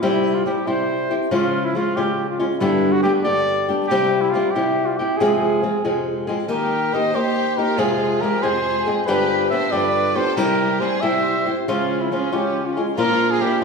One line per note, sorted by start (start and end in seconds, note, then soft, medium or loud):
0.01 0.46 C3 medium
0.01 0.45 G3 medium
0.01 0.45 C4 medium
0.01 0.36 E4 medium
0.01 0.46 E4 medium
0.01 0.46 G4 medium
0.34 0.45 F4 medium
0.46 0.66 G3 soft
0.46 0.67 C4 medium
0.46 0.66 E4 soft
0.46 0.69 G4 medium
0.46 0.66 G4 medium
0.67 1.11 C3 soft
0.67 1.11 G3 medium
0.67 1.11 C4 soft
0.67 1.10 E4 medium
0.67 1.09 G4 soft
0.67 1.16 C5 medium
1.11 1.31 C4 soft
1.11 1.31 E4 soft
1.11 1.32 G4 soft
1.31 1.75 C#3 medium
1.31 1.74 F3 medium
1.31 1.75 G#3 medium
1.31 1.75 C#4 medium
1.31 1.66 F4 medium
1.31 1.76 F4 medium
1.65 1.78 E4 medium
1.75 1.96 F3 medium
1.75 1.97 G#3 medium
1.75 1.96 C#4 soft
1.75 1.98 F4 medium
1.75 1.96 F4 soft
1.96 2.41 C#3 soft
1.96 2.41 F3 soft
1.96 2.39 G#3 soft
1.96 2.39 C#4 soft
1.96 2.38 F4 medium
1.96 2.28 G4 medium
2.29 2.39 F4 medium
2.40 2.61 G#3 soft
2.40 2.61 C#4 medium
2.40 2.61 F4 medium
2.60 3.05 G2 medium
2.60 3.05 D3 medium
2.60 3.03 G3 medium
2.60 3.04 B3 medium
2.60 3.04 D4 medium
2.60 2.94 E4 medium
2.60 3.05 G4 medium
2.92 3.02 F#4 medium
3.03 3.25 G3 medium
3.03 3.25 B3 medium
3.03 3.24 D4 medium
3.03 3.13 G4 medium
3.03 3.23 G4 medium
3.24 3.70 G2 soft
3.24 3.70 D3 soft
3.24 3.70 G3 medium
3.24 3.69 B3 medium
3.24 3.68 D4 soft
3.24 3.67 G4 medium
3.24 3.71 D5 loud
3.69 3.90 G3 medium
3.69 3.91 B3 soft
3.69 3.91 D4 medium
3.69 3.90 G4 medium
3.87 4.34 C3 medium
3.87 4.23 G4 medium
3.91 4.33 G3 medium
3.91 4.34 C4 medium
3.91 4.34 E4 medium
3.91 4.34 G4 medium
4.21 4.32 E4 medium
4.31 4.55 G3 medium
4.31 4.55 C4 medium
4.31 4.53 F4 medium
4.35 4.55 E4 medium
4.35 4.54 G4 medium
4.51 4.88 G4 medium
4.55 5.00 C3 soft
4.55 4.99 G3 soft
4.55 4.99 C4 medium
4.55 4.99 E4 medium
4.55 4.98 G4 soft
4.86 4.99 F4 medium
4.97 5.21 E4 medium
4.97 5.19 G4 medium
4.97 5.20 G4 medium
5.01 5.20 C4 soft
5.17 5.64 F2 medium
5.17 5.64 C3 medium
5.17 5.62 F3 medium
5.17 5.63 G#3 medium
5.17 5.62 C4 medium
5.17 6.06 G#4 medium
5.22 5.63 G#4 medium
5.63 5.84 F3 soft
5.63 5.84 G#3 soft
5.63 5.84 C4 medium
5.63 5.83 G#4 soft
5.85 6.29 F2 medium
5.85 6.29 C3 soft
5.85 6.28 F3 medium
5.85 6.28 G#3 medium
5.85 6.27 C4 medium
5.85 6.26 G#4 medium
6.27 6.48 F3 medium
6.27 6.49 G#3 medium
6.27 6.49 C4 medium
6.27 6.49 G#4 medium
6.48 6.92 D#3 medium
6.48 6.93 A#3 medium
6.48 6.93 D#4 medium
6.48 6.94 G4 medium
6.48 6.91 G4 medium
6.48 6.95 A#4 medium
6.94 7.14 D#3 soft
6.94 7.14 A#3 soft
6.94 7.14 D#4 medium
6.94 7.13 G4 medium
6.94 7.15 C5 medium
6.94 7.17 D#5 medium
7.14 7.59 D#3 soft
7.14 7.58 A#3 soft
7.14 7.57 D#4 medium
7.14 7.57 G4 medium
7.14 7.55 G4 medium
7.14 7.59 C5 medium
7.56 7.78 A#3 soft
7.56 7.78 D#4 medium
7.56 7.78 G4 medium
7.56 7.79 G4 medium
7.56 7.81 A#4 medium
7.77 8.22 F2 medium
7.77 8.22 C3 medium
7.77 8.22 F3 medium
7.77 8.22 G#3 medium
7.77 8.22 C4 medium
7.77 8.21 F4 medium
7.77 8.22 G#4 medium
8.20 8.43 F3 soft
8.20 8.42 G#3 medium
8.20 8.42 C4 soft
8.20 8.42 G4 medium
8.20 8.42 G#4 medium
8.20 8.44 A#4 medium
8.42 8.88 F2 soft
8.42 8.87 C3 soft
8.42 8.87 F3 medium
8.42 8.86 G#3 soft
8.42 8.86 C4 medium
8.42 8.92 G#4 medium
8.42 8.85 G#4 medium
8.42 8.92 C5 medium
8.86 9.07 F3 soft
8.86 9.08 G#3 medium
8.86 9.08 C4 medium
8.86 9.08 G#4 medium
9.06 9.52 G2 medium
9.06 9.52 D3 medium
9.06 9.50 F3 medium
9.06 9.51 B3 medium
9.06 9.51 D4 medium
9.06 9.49 G4 medium
9.06 9.53 G4 medium
9.06 9.48 B4 medium
9.50 9.72 F3 soft
9.50 9.72 B3 medium
9.50 9.71 D4 medium
9.50 9.71 G4 medium
9.50 9.71 C5 medium
9.50 9.73 E5 medium
9.72 10.17 G2 medium
9.72 10.17 D3 soft
9.72 10.15 F3 soft
9.72 10.15 B3 medium
9.72 10.15 D4 medium
9.72 10.14 G4 medium
9.72 10.17 B4 medium
9.72 10.18 D5 medium
10.15 10.37 F3 soft
10.15 10.37 B3 soft
10.15 10.37 D4 medium
10.15 10.37 G4 medium
10.15 10.39 A4 medium
10.15 10.36 C5 medium
10.37 10.81 C3 medium
10.37 10.80 G3 medium
10.37 10.81 C4 medium
10.37 10.82 E4 medium
10.37 10.79 G4 medium
10.37 10.82 G4 medium
10.37 10.82 A#4 medium
10.81 11.02 G3 medium
10.81 11.02 C4 medium
10.81 11.02 E4 soft
10.81 11.01 G4 medium
10.81 11.03 G#4 medium
10.81 11.02 C5 medium
11.01 11.47 C3 medium
11.01 11.47 G3 medium
11.01 11.46 C4 medium
11.01 11.45 E4 medium
11.01 11.45 G4 medium
11.01 11.53 C5 medium
11.01 11.51 E5 loud
11.46 11.68 C4 soft
11.46 11.68 E4 soft
11.46 11.68 G4 soft
11.67 12.12 C#3 medium
11.67 12.11 F3 medium
11.67 12.11 G#3 medium
11.67 11.99 C#4 medium
11.67 12.11 C#4 medium
11.67 12.03 F4 medium
11.67 12.13 F4 medium
12.01 12.12 C4 medium
12.01 12.12 E4 medium
12.12 12.32 F3 soft
12.12 12.32 G#3 medium
12.12 12.31 C#4 medium
12.12 12.32 C#4 medium
12.12 12.36 F4 medium
12.12 12.31 F4 medium
12.32 12.77 C#3 soft
12.32 12.77 F3 medium
12.32 12.77 G#3 soft
12.32 12.76 C#4 medium
12.32 12.64 C#4 medium
12.32 12.76 F4 medium
12.32 12.68 G4 medium
12.65 12.77 C#4 soft
12.65 12.77 F4 medium
12.77 12.97 G#3 soft
12.77 12.98 C#4 medium
12.77 12.97 F4 medium
12.96 13.41 A#2 medium
12.96 13.39 F3 medium
12.96 13.40 A#3 medium
12.96 13.40 D4 medium
12.96 13.28 F4 medium
12.96 13.41 F4 medium
12.96 13.32 A#4 loud
13.31 13.43 F4 medium
13.31 13.43 G#4 medium
13.40 13.61 F3 soft
13.40 13.61 A#3 medium
13.40 13.61 D4 soft
13.40 13.63 E4 medium
13.40 13.60 F4 medium
13.40 13.63 G4 loud